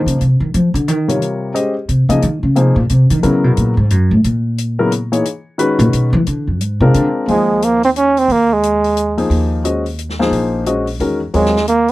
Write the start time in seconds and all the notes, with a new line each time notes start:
Already playing: F3 A#3 D#4 G#4 C5
0.06 C#3, closed hi-hat
0.21 C3, closed hi-hat
0.40 D#3
0.54 F3, closed hi-hat
0.74 D3, closed hi-hat
0.88 D#3, closed hi-hat
1.08 C3 G3 F4 A#4 C#5, closed hi-hat
1.22 closed hi-hat
1.54 G#3 C#4 G4 C5 D#5, closed hi-hat
1.89 C3, closed hi-hat
2.09 C#3 F3 A#3 D#4 G#4 D#5, closed hi-hat
2.22 D#3, closed hi-hat
2.43 C#3
2.55 C3 F3 A#3 D#4 G#4 C5, closed hi-hat
2.76 A#2
2.89 C3, closed hi-hat
3.10 D#3, closed hi-hat
3.23 C#3 F#3 B3 E4 A#4, closed hi-hat
3.44 B2
3.57 A#2, closed hi-hat
3.77 G#2
3.90 F#2, closed hi-hat
4.11 A2
4.24 A#2, closed hi-hat
4.58 closed hi-hat
4.79 C#3 F#3 B3 E4 A#4
4.92 closed hi-hat
5.12 E3 A#3 D#4 G#4 C#5, closed hi-hat
5.25 closed hi-hat
5.58 D#3 G#3 C#4 F#4 B4, closed hi-hat
5.79 A#2, closed hi-hat
5.93 B2, closed hi-hat
6.13 E3
6.27 D3, closed hi-hat
6.47 F2
6.61 G#2, closed hi-hat
6.80 C3 G#3 C4 D4 F4 A#4
6.94 D3, closed hi-hat
7.28 D#2 F3 G#3 A#3 D#4 G#4 C5, open hi-hat
7.62 A#3, closed hi-hat
7.83 C4, open hi-hat
7.96 C#4, closed hi-hat
8.17 C4, open hi-hat
8.28 D#2 A#3, open hi-hat
8.53 G#3
8.63 closed hi-hat
8.84 open hi-hat
8.97 closed hi-hat
9.17 F3 A#3 D#4 G#4 C5, open hi-hat
9.30 D#2, open hi-hat
9.64 G#3 C#4 F#4 C5 D#5, closed hi-hat
9.86 open hi-hat
9.99 closed hi-hat
10.09 snare
10.19 F3 A#3 D#4 G#4 C5, snare
10.31 A#1, open hi-hat
10.66 G#3 C#4 F#4 C5 D#5, closed hi-hat
10.87 open hi-hat
11.00 E2 D#3 G#3 C#4 F#4 A#4, open hi-hat
11.34 D#2 F#3 G#3 C4 F4 A#4 C#5, open hi-hat
11.45 snare
11.56 snare
11.68 A#3, closed hi-hat
11.88 open hi-hat